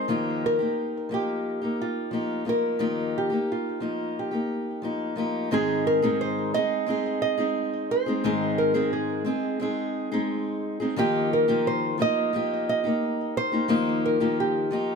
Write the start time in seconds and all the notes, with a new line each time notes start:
Already playing: C5
0.08 D#3 F3 A#3 D#4 G4
0.46 A#4
0.59 A#3 D#4 G4
1.09 F3 A#3 D#4 G4
1.14 G4
1.62 A#3 D#4 G4
1.82 F4
2.11 F3 A#3 D#4 G4
2.45 F3 A#3 D#4 G4
2.49 A#4
2.79 D#3 F3 A#3 D#4 G4
3.18 G4
3.30 A#3 D#4 G4
3.52 F4
3.80 F3 A#3 D#4 G4
4.19 G4
4.31 A#3 D#4 G4
4.82 F3 A#3 D#4 G4
5.16 F3 A#3 D#4 G4
5.51 G#2 D#3 G#3 C4 D#4 G#4
5.87 A#4
6.02 G#2 D#3 G#3 C4 D#4 G#4
6.21 C5
6.54 G#3 C4 D#4 G#4 D#5
6.86 G#3 C4 D#4 G#4
7.22 D#5
7.37 G#3 C4 D#4 G#4
7.91 C5
8.06 G#3 C4 D#4 G#4
8.24 G#2 D#3 G#3 C4 D#4 G#4
8.58 A#4
8.74 G#2 D#3 G#3 C4 D#4 G#4
8.93 G#4
9.25 G#3 C4 D#4 G#4
9.60 G#3 C4 D#4 G#4
10.12 G#3 C4 D#4 G#4
10.80 G#3 C4 D#4 G#4
10.96 D#3 F3 A#3 D#4 G4
11.33 A#4
11.48 D#3 F3 A#3 D#4 G4
11.67 C5
11.98 F3 A#3 D#4 G4
12.02 D#5
12.33 F3 A#3 D#4 G4
12.69 D#5
12.84 A#3 D#4 G4
13.37 C5
13.52 A#3 D#4 G4
13.68 D#3 F3 A#3 D#4 G4
14.06 A#4
14.20 D#3 F3 A#3 D#4 G4
14.40 G4
14.71 F3 A#3 D#4 G4